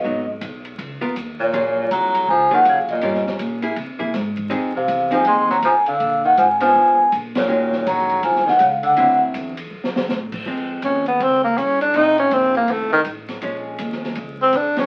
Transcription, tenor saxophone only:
X:1
M:4/4
L:1/8
Q:"Swing" 1/4=162
K:Db
V:1 name="Tenor saxophone" clef=bass
_C, z6 B,,- | B,,2 G,2 F, E, D, B,,- | B,, z6 z | z C,2 F, A, G, F, =D,- |
=D, E, F, F,3 z B,,- | B,,2 G,2 F, E, D, =D,- | =D, z6 z | z2 D _C =C B, D =D |
E D C B, =A, E, z2 | z4 z C =D _D |]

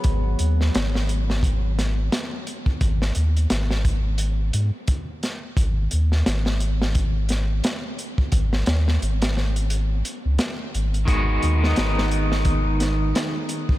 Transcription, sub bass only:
X:1
M:4/4
L:1/16
Q:"Swing 16ths" 1/4=87
K:G#m
V:1 name="Sub bass" clef=bass
G,,,2 D,,2 G,,,8 z4 | G,,,2 D,,2 G,,,6 G,, z4 z | G,,,2 D,,2 G,,,8 z4 | G,,,2 D,,2 G,,,6 z C,, z2 G,,,2 |
G,,,2 D,,2 G,,,8 z4 |]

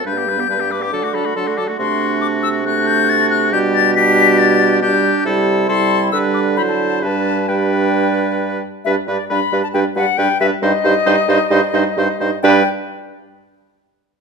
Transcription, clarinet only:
X:1
M:4/4
L:1/16
Q:1/4=136
K:G
V:1 name="Clarinet"
D B, D B, D B, D B, D F D F D F D F | D8 D8 | D4 D8 D4 | E4 E4 D4 E4 |
D4 D8- D2 z2 | D2 D2 D2 D2 D2 D2 D2 D2 | _E2 E2 E2 E2 E2 E2 E2 E2 | D2 z12 z2 |]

